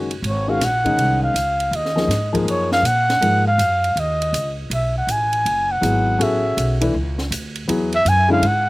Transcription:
Already playing: F#1
0.11 ride
0.22 G#1, ride
0.28 C#5
0.48 D#3 G#3 C#4 F#4 F5
0.60 A#1, snare, hi-hat pedal, ride
0.64 F#5
0.84 D#3 G#3 C#4 D#4, kick, ride
0.97 C2, ride
1.24 F5
1.34 C#2, hi-hat pedal, ride
1.60 ride
1.71 D#2, ride
1.76 D#5
1.85 snare
1.96 F3 A#3 D#4 G#4, snare
2.08 G#2, snare, hi-hat pedal, ride
2.33 F3 A#3 D#4 G#4, kick, ride
2.45 F#2, ride
2.50 C#5
2.72 F5, snare
2.83 A#2 F#5, hi-hat pedal, ride
3.10 snare, ride
3.21 G#2 F3 A#3 D#4 G#4, ride
3.47 F5
3.58 F#2, hi-hat pedal, ride
3.84 ride
3.96 D#2 D#5, ride
4.22 ride
4.33 C#2, hi-hat pedal, ride
4.70 B1 E5, ride
4.98 F#5
5.07 A1, hi-hat pedal, ride
5.12 G#5
5.33 ride
5.45 F#1, ride
5.71 F#5
5.81 G#1 F#3 B3 E4 G#4, hi-hat pedal, ride
6.19 A1 C#4 F#4 G#4 A4, ride
6.23 E5
6.57 B1, hi-hat pedal, ride
6.81 E3 A3 D4 E4, ride
6.94 C#2
7.18 snare
7.31 D2, hi-hat pedal, ride
7.55 ride
7.68 E2 F#3 B3 E4 G#4, ride
7.92 E5, ride
8.05 F#2 G#5, hi-hat pedal, ride
8.28 D3 G#3 C#4 E4 F5
8.42 G#2, ride
8.47 F#5

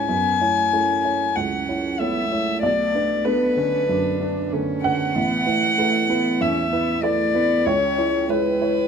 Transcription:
Already playing: G#2 G#3 E4 B4 C#5 G#5
0.08 F#2 B3
0.41 A3 E4 C#5
0.72 A3 C#4 E4 C#5
1.04 E4 C#5
1.35 C#2 C#4 F#5
1.69 E4 C#5
1.99 A3 B3 E4 C#5 E5
2.32 A3 E4 C#5
2.63 B1 D5
2.95 D4 B4
3.25 A3 B3 D4 B4
3.57 D3 C#4 B4
3.89 F#2 D4
4.20 D4 B4
4.53 D3 A3 C#4 B4
4.84 D3 B4 F#5
5.15 A1 B3
5.46 A3 E4 B4
5.77 A3 E4 B4
6.09 B3 E4 B4
6.41 E2 C#4 E5
6.72 B3 E4 B4
7.03 A3 E4 B4 D5
7.34 B3 E4 B4
7.66 C#2 C#4 C#5
7.98 E4 C#5
8.29 G#3 E4 B4 C#5
8.61 E4 C#5

